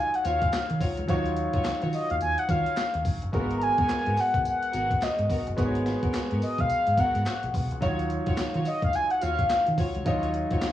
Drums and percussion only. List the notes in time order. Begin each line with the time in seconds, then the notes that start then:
0.14 closed hi-hat
0.25 closed hi-hat, tambourine
0.42 kick, closed hi-hat
0.53 snare, clap, closed hi-hat, tambourine
0.70 closed hi-hat
0.81 kick, open hi-hat, tambourine
0.97 closed hi-hat
1.09 kick, closed hi-hat, tambourine
1.26 closed hi-hat
1.37 closed hi-hat
1.54 kick, closed hi-hat
1.65 snare, clap, closed hi-hat, tambourine
1.82 closed hi-hat
1.93 open hi-hat, tambourine
2.10 closed hi-hat
2.21 closed hi-hat, tambourine
2.38 closed hi-hat
2.49 kick, closed hi-hat, tambourine
2.66 closed hi-hat
2.77 snare, clap, closed hi-hat, tambourine
2.94 closed hi-hat
3.05 kick, open hi-hat, tambourine
3.22 closed hi-hat
3.33 kick, closed hi-hat, tambourine
3.51 closed hi-hat
3.62 closed hi-hat
3.78 kick, closed hi-hat
3.89 snare, clap, closed hi-hat, tambourine
4.06 closed hi-hat
4.17 clap, open hi-hat, tambourine
4.34 kick, closed hi-hat
4.45 closed hi-hat, tambourine
4.62 closed hi-hat
4.73 closed hi-hat, tambourine
4.91 kick, closed hi-hat
5.02 snare, clap, closed hi-hat, tambourine
5.19 closed hi-hat
5.30 kick, open hi-hat, tambourine
5.47 closed hi-hat
5.58 kick, closed hi-hat, tambourine
5.75 closed hi-hat
5.86 snare, closed hi-hat
6.03 kick, closed hi-hat
6.14 snare, clap, closed hi-hat, tambourine
6.31 closed hi-hat
6.42 open hi-hat, tambourine
6.58 kick, closed hi-hat
6.70 closed hi-hat, tambourine
6.87 closed hi-hat
6.97 kick, closed hi-hat, tambourine
7.15 closed hi-hat
7.26 snare, clap, closed hi-hat, tambourine
7.43 closed hi-hat
7.54 kick, open hi-hat, tambourine
7.71 closed hi-hat
7.82 kick, closed hi-hat, tambourine
7.99 closed hi-hat
8.10 closed hi-hat
8.26 kick, closed hi-hat
8.37 snare, clap, closed hi-hat, tambourine
8.54 closed hi-hat
8.65 clap, open hi-hat, tambourine
8.82 kick, closed hi-hat
8.93 closed hi-hat, tambourine
9.10 closed hi-hat
9.21 closed hi-hat, tambourine
9.39 kick, closed hi-hat
9.50 snare, clap, closed hi-hat, tambourine
9.66 closed hi-hat
9.78 kick, open hi-hat, tambourine
9.95 closed hi-hat
10.06 kick, closed hi-hat, tambourine
10.23 closed hi-hat
10.34 closed hi-hat
10.51 kick, closed hi-hat
10.62 snare, clap, closed hi-hat, tambourine